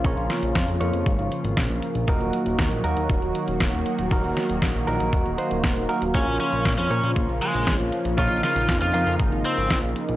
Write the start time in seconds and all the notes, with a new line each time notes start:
Already playing: C#3 F3 A#3 F4
0.04 A#1 C#4 F4 A#4 C#5, kick, closed hi-hat
0.17 A#1, closed hi-hat
0.30 snare, closed hi-hat
0.43 A#1, closed hi-hat
0.55 F2, kick, snare, closed hi-hat
0.68 F2, closed hi-hat
0.80 F2 C#4 F4 A#4 C#5, closed hi-hat
0.93 F2, closed hi-hat
1.06 G#1, kick, closed hi-hat
1.19 G#1, closed hi-hat
1.32 closed hi-hat
1.44 G#1, closed hi-hat
1.57 A#1, kick, snare, closed hi-hat
1.70 A#1, closed hi-hat
1.82 closed hi-hat
1.95 A#1, closed hi-hat
2.08 D#1 D#3 F#3 A#3 D#4 F#4 A#4, kick, closed hi-hat
2.21 D#1, closed hi-hat
2.33 closed hi-hat
2.46 D#1, closed hi-hat
2.59 D#2, kick, snare, closed hi-hat
2.71 A#1, closed hi-hat
2.84 D#2 A#3 D#4 F#4 A#4, closed hi-hat
2.97 D#2, closed hi-hat
3.10 D#1, kick, closed hi-hat
3.22 D#1, closed hi-hat
3.35 closed hi-hat
3.48 D#1, closed hi-hat
3.60 D#1, kick, snare, closed hi-hat
3.73 D#1, closed hi-hat
3.86 closed hi-hat
3.99 D#1, closed hi-hat
4.11 D#1 A#3 D#4 F#4 A#4, kick, closed hi-hat
4.24 D#1, closed hi-hat
4.37 snare, closed hi-hat
4.50 D#1, closed hi-hat
4.62 A#1, kick, snare, closed hi-hat
4.75 A#1, closed hi-hat
4.87 A#1 A#3 D#4 F#4 A#4, closed hi-hat
5.00 A#1, closed hi-hat
5.13 D#1, kick, closed hi-hat
5.26 D#1, closed hi-hat
5.38 A#3 D#4 F#4 C5, closed hi-hat
5.51 D#1, closed hi-hat
5.64 D#1, kick, snare, closed hi-hat
5.76 D#1, closed hi-hat
5.89 A#3 D#4 F#4 A#4, closed hi-hat
6.02 D#1, closed hi-hat
6.14 A#1 C#3 F3 C#4 F4 A#4 C#5, kick, closed hi-hat
6.27 A#1, closed hi-hat
6.40 C#4, closed hi-hat
6.53 A#1, closed hi-hat
6.65 A#2, kick, snare, closed hi-hat
6.78 F2 C#4, closed hi-hat
6.90 A#2 C#4 F4 A#4 C#5, closed hi-hat
7.03 A#2, closed hi-hat
7.16 A#1, kick, closed hi-hat
7.29 A#1, closed hi-hat
7.42 G#3, closed hi-hat
7.54 A#1, closed hi-hat
7.67 A#1, kick, snare, closed hi-hat
7.80 A#1, closed hi-hat
7.92 closed hi-hat
8.05 A#1, closed hi-hat
8.18 A#1 C#4 D#4 F4 A#4 C#5, kick, closed hi-hat
8.30 A#1, closed hi-hat
8.43 F4, snare, closed hi-hat
8.56 A#1, closed hi-hat
8.69 F2, kick, snare, closed hi-hat
8.81 F2 F4, closed hi-hat
8.94 F2 C#3 F4 A#4 F5, closed hi-hat
9.07 F2, closed hi-hat
9.20 G#1, kick, closed hi-hat
9.32 G#1, closed hi-hat
9.45 C4, closed hi-hat
9.58 G#1, closed hi-hat
9.70 A#1, kick, snare, closed hi-hat
9.83 A#1, closed hi-hat
9.96 closed hi-hat
10.09 A#1, closed hi-hat